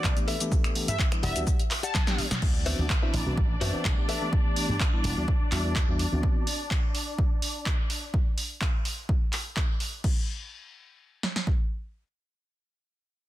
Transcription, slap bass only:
0.04 0.13 C2 medium
0.88 0.96 G2 loud
1.23 1.32 E1 medium
1.36 1.44 D2 medium
2.19 muted slap bass stroke soft
2.31 2.39 B2 medium
2.42 2.73 D2 medium
2.79 2.87 D2 loud
3.14 3.23 A1 medium
3.26 3.34 C2 medium
3.37 3.55 A1 medium
3.61 3.70 F#2 loud
3.74 muted slap bass stroke soft
3.85 3.94 C2 medium
4.69 4.77 G2 medium
5.04 5.13 E1 medium
5.17 5.25 D2 medium
5.41 muted slap bass stroke soft
5.52 5.82 E2 medium
5.89 6.05 E2 medium
6.12 6.20 D2 medium

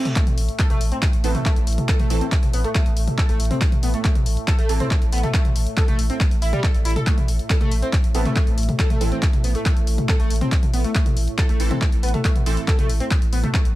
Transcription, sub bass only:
0.27 0.37 A1 medium
0.38 0.48 A1 loud
0.70 0.80 A1 medium
0.81 0.92 A1 medium
1.13 1.23 A1 medium
1.24 1.35 A1 loud
1.56 1.67 A1 medium
1.67 1.78 A1 loud
2.00 2.10 A1 medium
2.10 2.21 A1 loud
2.43 2.53 A1 medium
2.53 2.64 A1 loud
2.86 2.96 A1 medium
2.97 3.07 A1 loud
3.29 3.39 A1 medium
3.40 3.51 A1 loud
3.72 3.82 A1 medium
3.83 3.94 A1 loud
4.15 4.26 A1 medium
4.26 4.37 A1 loud
4.59 4.69 A1 medium
4.69 4.80 A1 loud
5.02 5.12 A1 medium
5.12 5.23 A1 loud
5.45 5.55 A1 medium
5.56 5.66 A1 loud
5.88 5.98 A1 medium
5.99 6.09 A1 loud
6.31 6.41 A1 medium
6.42 6.53 A1 loud
6.74 6.84 A1 medium
6.85 6.96 A1 loud
7.18 7.28 A1 medium
7.28 7.39 A1 loud
7.61 7.71 A1 medium
7.71 7.82 A1 loud
8.04 8.14 A1 medium
8.15 8.25 A1 loud
8.47 8.57 A1 medium
8.58 8.68 A1 loud
8.90 9.00 A1 medium
9.01 9.12 A1 loud
9.33 9.43 A1 medium
9.44 9.55 A1 loud
9.77 9.87 A1 medium
9.87 9.98 A1 loud
10.20 10.30 A1 medium
10.30 10.41 A1 loud
10.63 10.73 A1 medium
10.74 10.84 A1 loud
11.06 11.16 A1 medium
11.17 11.27 A1 medium
11.49 11.59 A1 medium
11.60 11.71 A1 loud
11.92 12.03 A1 medium
12.03 12.14 A1 loud
12.36 12.46 A1 medium
12.46 12.57 A1 loud
12.79 12.89 A1 medium
12.89 13.00 A1 medium
13.22 13.32 A1 medium
13.33 13.43 A1 loud
13.65 13.75 A1 medium

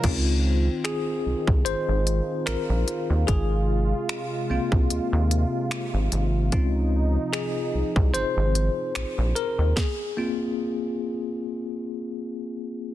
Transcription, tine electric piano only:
0.04 1.21 C4 medium
0.04 1.22 D#4 medium
0.04 1.22 F4 medium
0.84 1.62 G#4 medium
1.65 2.49 C5 loud
2.46 3.24 A#4 medium
3.27 6.07 G#4 medium
4.50 5.05 A#3 medium
4.50 5.05 C4 soft
4.50 5.06 F4 medium
6.52 9.73 C4 medium
6.52 9.73 D#4 soft
6.52 9.73 F4 medium
7.33 8.17 G#4 medium
8.14 9.32 C5 loud
9.35 9.78 A#4 medium
9.76 12.16 G#4 medium
10.17 12.94 A#3 medium
10.17 12.94 C4 medium
10.17 12.94 F4 medium

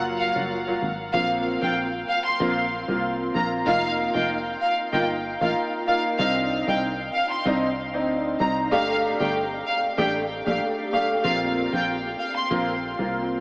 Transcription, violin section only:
0.19 0.31 F5 medium
1.14 1.25 F5 loud
1.62 1.72 G5 medium
2.08 2.20 F5 medium
2.25 2.36 C6 medium
3.35 3.47 A#5 medium
3.67 3.88 F5 loud
4.15 4.25 G5 medium
4.61 4.73 F5 medium
4.93 5.04 G5 medium
5.41 5.51 F5 medium
5.87 5.99 F5 medium
6.19 6.31 F5 loud
6.67 6.78 G5 medium
7.14 7.25 F5 medium
7.31 7.41 C6 medium
8.40 8.52 A#5 medium
8.72 8.93 F5 loud
9.20 9.30 G5 medium
9.66 9.78 F5 medium
9.98 10.10 G5 medium
10.46 10.57 F5 medium
10.93 11.04 F5 medium
11.24 11.36 F5 loud
11.73 11.83 G5 medium
12.19 12.31 F5 medium
12.36 12.46 C6 medium

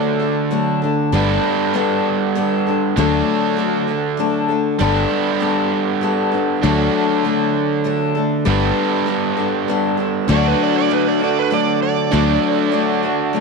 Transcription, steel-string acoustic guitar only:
0.00 0.20 F#3 medium
0.00 0.20 A3 medium
0.00 0.19 D4 medium
0.00 0.18 A4 medium
0.19 0.50 A3 soft
0.19 0.51 D4 soft
0.19 0.51 A4 medium
0.51 0.82 F#3 medium
0.51 0.82 A3 medium
0.51 0.82 D4 medium
0.51 0.81 A4 medium
0.82 1.13 A3 soft
0.82 1.13 D4 medium
0.82 1.13 A4 soft
1.12 1.72 G3 loud
1.12 1.74 B3 medium
1.12 1.75 D4 loud
1.12 1.76 A4 loud
1.74 2.34 G3 medium
1.74 2.35 B3 medium
1.74 2.36 D4 medium
1.74 2.37 A4 medium
2.35 2.66 G3 medium
2.35 2.66 B3 medium
2.35 2.67 D4 medium
2.35 2.65 A4 medium
2.67 2.98 B3 soft
2.67 2.97 D4 soft
2.67 2.97 A4 medium
2.97 3.58 D3 medium
2.97 3.55 F#3 loud
2.97 3.58 A3 loud
2.97 3.59 D4 loud
2.97 3.60 A4 loud
3.57 3.88 F#3 medium
3.57 3.89 A3 medium
3.57 3.88 D4 medium
3.57 3.86 A4 medium
3.87 4.18 A3 soft
3.87 4.19 D4 medium
3.87 4.19 A4 medium
4.17 4.49 F#3 medium
4.17 4.50 A3 medium
4.17 4.49 D4 medium
4.17 4.47 A4 medium
4.48 4.80 A3 soft
4.48 4.79 D4 medium
4.48 4.80 A4 medium
4.79 5.39 G3 loud
4.79 5.40 B3 loud
4.79 5.41 D4 loud
4.79 5.42 A4 loud
5.40 6.00 G3 medium
5.40 6.01 B3 medium
5.40 6.03 D4 medium
5.40 6.04 A4 medium
6.01 6.32 G3 medium
6.01 6.33 B3 medium
6.01 6.32 D4 medium
6.01 6.30 A4 medium
6.32 6.63 B3 soft
6.32 6.63 D4 soft
6.32 6.63 A4 medium
6.63 7.24 D3 medium
6.63 7.23 F#3 medium
6.63 7.25 A3 loud
6.63 7.26 D4 loud
6.63 7.27 A4 loud
7.24 7.83 F#3 medium
7.24 7.84 A3 medium
7.24 7.85 D4 medium
7.24 7.86 A4 medium
7.84 8.15 F#3 medium
7.84 8.16 A3 medium
7.84 8.16 D4 medium
7.84 8.14 A4 medium
8.15 8.46 A3 soft
8.15 8.45 D4 soft
8.15 8.46 A4 medium
8.45 9.05 G3 medium
8.45 9.06 B3 medium
8.45 9.08 D4 medium
8.45 9.08 A4 loud
9.06 9.37 G3 medium
9.06 9.38 B3 medium
9.06 9.37 D4 medium
9.06 9.35 A4 medium
9.37 9.68 B3 soft
9.37 9.68 D4 soft
9.37 9.68 A4 medium
9.68 9.99 G3 medium
9.68 9.99 B3 medium
9.68 9.98 D4 medium
9.68 9.96 A4 medium
9.97 10.29 B3 soft
9.97 10.28 D4 soft
9.97 10.28 A4 medium
10.28 12.11 D3 medium
10.28 10.89 F#3 loud
10.28 10.90 A3 loud
10.28 10.91 D4 loud
10.28 10.91 F#4 loud
10.89 11.20 F#3 medium
10.89 11.21 A3 medium
10.89 11.20 D4 medium
10.89 11.19 F#4 medium
11.20 11.50 A3 soft
11.20 11.51 D4 medium
11.20 11.51 F#4 medium
11.50 12.12 F#3 medium
11.50 12.12 A3 medium
11.50 12.13 D4 medium
11.50 12.13 F#4 medium
12.11 12.73 D3 medium
12.11 12.71 F#3 medium
12.11 12.72 A3 medium
12.11 12.72 D4 loud
12.11 12.73 F#4 loud
12.72 13.03 F#3 medium
12.72 13.04 A3 medium
12.72 13.03 D4 medium
12.72 13.02 F#4 medium
13.03 13.33 A3 soft
13.03 13.34 D4 soft
13.03 13.34 F#4 medium
13.33 13.40 F#3 medium
13.33 13.40 A3 medium
13.33 13.40 D4 medium
13.33 13.40 F#4 medium

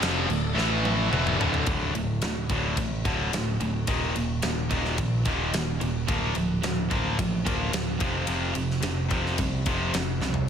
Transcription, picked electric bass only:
0.02 0.27 F1 medium
0.29 0.55 D1 medium
0.56 1.08 A1 loud
1.11 1.37 E1 medium
1.39 1.65 D1 medium
1.67 1.93 D1 loud
1.94 2.21 D1 medium
2.22 2.49 D1 medium
2.49 2.76 D1 medium
2.77 3.04 A1 medium
3.05 3.32 D1 medium
3.33 3.59 D1 medium
3.61 3.87 D1 medium
3.88 4.14 D#1 loud
4.16 4.42 D#1 medium
4.42 4.69 D#1 medium
4.71 4.97 D#1 medium
4.98 5.25 A#1 medium
5.26 5.52 D#1 medium
5.53 5.79 D#1 medium
5.81 6.07 D#1 medium
6.08 6.35 D1 medium
6.35 6.62 D1 medium
6.63 6.90 D1 medium
6.91 7.18 D1 medium
7.18 7.45 A1 medium
7.47 7.72 D1 medium
7.72 7.99 D1 medium
8.00 8.27 F1 medium
8.28 8.55 F1 loud
8.56 8.82 F1 medium
8.82 9.10 F1 medium
9.11 9.38 F1 medium
9.39 9.65 C2 medium
9.66 9.93 F1 medium
9.93 10.20 F1 medium
10.21 10.48 C2 medium

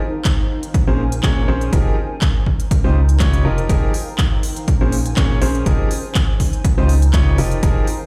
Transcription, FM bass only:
0.88 1.21 A#1 medium
1.24 1.46 A#1 medium
1.48 1.70 A#1 loud
1.73 1.92 F1 medium
2.84 3.18 C#2 medium
3.20 3.43 C#2 medium
3.45 3.67 F1 medium
3.69 3.88 F1 medium
4.81 5.15 A#1 medium
5.17 5.39 A#1 medium
5.42 5.64 A#1 medium
5.66 5.85 F1 loud
6.78 7.11 C#2 medium
7.14 7.36 C#2 medium
7.38 7.61 F1 medium
7.63 7.82 F1 loud

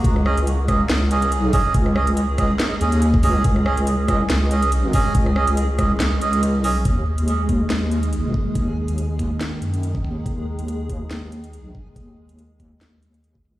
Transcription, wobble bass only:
0.05 0.88 C#2 medium
0.89 1.33 C#2 loud
1.33 1.52 C2 loud
1.75 2.58 C#2 loud
2.81 3.22 D#2 loud
3.23 3.43 C#2 loud
3.45 4.28 C#2 loud
4.30 4.92 C#2 loud
5.15 5.99 C#2 loud
6.00 6.59 C#2 loud
6.59 6.84 C2 loud
6.85 7.69 D#2 loud
7.70 8.32 D#2 loud
8.55 9.39 D#2 medium
9.62 10.03 F#2 medium
10.04 10.24 D#2 loud
10.26 11.09 D#2 loud
11.11 11.73 D#2 loud
11.96 12.79 D#2 medium
12.81 13.43 D#2 medium
13.45 13.60 C#2 loud

